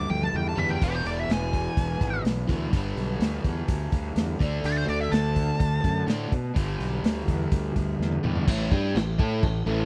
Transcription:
Already playing: overdriven electric guitar G2 D3 G3
0.10 fingered electric bass D2, lead electric guitar G5, high tom
0.22 lead electric guitar A5, high tom
0.33 fingered electric bass E2, lead electric guitar G5, mid tom
0.49 lead electric guitar A5
0.56 fingered electric bass E2, overdriven electric guitar G2 D3 G3, lead electric guitar E5, floor tom
0.70 lead electric guitar G5, floor tom
0.80 fingered electric bass E1, overdriven electric guitar E2 B2 E3, lead electric guitar G4, kick, open hi-hat, crash
0.95 lead electric guitar C5
1.05 fingered electric bass E1, lead electric guitar D5, open hi-hat
1.19 lead electric guitar E5
1.29 fingered electric bass E1, lead electric guitar G#5, snare, open hi-hat
1.53 kick, open hi-hat
1.77 fingered electric bass E1, kick, open hi-hat
2.01 fingered electric bass G#1, kick, open hi-hat
2.24 fingered electric bass B1, snare, open hi-hat
2.47 fingered electric bass D2, overdriven electric guitar E2 B2 E3, kick, open hi-hat
2.71 fingered electric bass G1, overdriven electric guitar G2 D3 G3, kick, open hi-hat
2.96 fingered electric bass B1, open hi-hat
3.19 fingered electric bass D2, snare, open hi-hat
3.44 fingered electric bass E2, kick, open hi-hat
3.68 fingered electric bass D2, kick, open hi-hat
3.92 fingered electric bass D2, kick, open hi-hat
4.16 fingered electric bass E2, snare, open hi-hat
4.39 fingered electric bass D2, overdriven electric guitar D3 A3 D4, kick, open hi-hat
4.64 fingered electric bass D2, lead electric guitar A4, open hi-hat
4.77 lead electric guitar C5
4.88 fingered electric bass D2, lead electric guitar D5, open hi-hat
5.01 lead electric guitar E5
5.12 fingered electric bass D2, lead electric guitar A5, snare, open hi-hat
5.36 kick, open hi-hat
5.60 fingered electric bass D2, kick, open hi-hat
5.84 fingered electric bass F#2, kick, open hi-hat
6.07 fingered electric bass A2, overdriven electric guitar D3 A3 D4, snare, open hi-hat
6.32 fingered electric bass B2, kick, open hi-hat
6.54 fingered electric bass G1, overdriven electric guitar G2 D3 G3, kick, open hi-hat
6.79 fingered electric bass B1, open hi-hat
7.03 fingered electric bass D2, snare, open hi-hat
7.27 fingered electric bass E2, kick, open hi-hat
7.51 fingered electric bass D2, kick, open hi-hat
7.76 fingered electric bass D2, kick, open hi-hat
7.99 fingered electric bass E2, snare
8.12 mid tom
8.23 fingered electric bass E2, overdriven electric guitar G2 D3 G3, mid tom
8.36 floor tom
8.47 fingered electric bass A1, overdriven electric guitar A2 E3 A3, kick, crash
8.71 fingered electric bass G2, overdriven electric guitar G3 D4 G4, kick, crash
8.95 fingered electric bass A1, overdriven electric guitar A2 E3, snare, crash
9.19 fingered electric bass A2, overdriven electric guitar A3 E4 A4, kick, crash
9.43 fingered electric bass A1, overdriven electric guitar A2 E3, kick, crash
9.66 fingered electric bass A1, overdriven electric guitar A2 E3 A3, crash

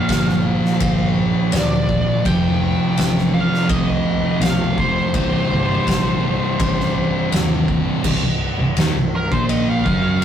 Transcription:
Already playing: distorted electric guitar A#2 F3 A#3, lead electric guitar F5
0.09 fretless electric bass G1, kick, snare, ride bell
0.29 snare
0.45 distorted electric guitar A#2 F3 A#3
0.65 snare
0.80 fretless electric bass G1, kick, ride bell
1.52 fretless electric bass D1, lead electric guitar D5, snare, ride bell
1.89 kick
2.24 fretless electric bass F1, distorted electric guitar F2 C3 F3, lead electric guitar G5, kick, ride bell
2.97 fretless electric bass A1, snare, ride bell
3.18 snare
3.34 distorted electric guitar F2 C3 F3, lead electric guitar F5
3.54 snare
3.69 fretless electric bass C2, lead electric guitar D#5, kick, ride bell
4.39 fretless electric bass B1, lead electric guitar F5, ride bell
4.44 snare
4.78 lead electric guitar C5, kick
5.14 fretless electric bass C1, distorted electric guitar C2 G2 C3, kick, ride bell
5.50 fretless electric bass G1
5.87 fretless electric bass A#1, kick, snare, ride bell
6.23 distorted electric guitar C2 G2 C3
6.59 fretless electric bass A1, kick, ride bell
6.80 snare
7.32 fretless electric bass D#1, snare, ride bell
7.68 kick
8.04 fretless electric bass C1, distorted electric guitar C2 C3, kick, crash
8.23 fretless electric bass C1, distorted electric guitar C2
8.59 fretless electric bass C1, distorted electric guitar C2
8.77 fretless electric bass D#1, distorted electric guitar D#2 D#3, snare, ride bell
8.94 fretless electric bass C1, distorted electric guitar C2
9.16 lead electric guitar A#4
9.31 fretless electric bass A#1, distorted electric guitar A#2 A#3, lead electric guitar C5, kick
9.49 lead electric guitar D#5, ride bell
9.69 lead electric guitar F5
9.85 fretless electric bass F#1, distorted electric guitar F#2 F#3, kick

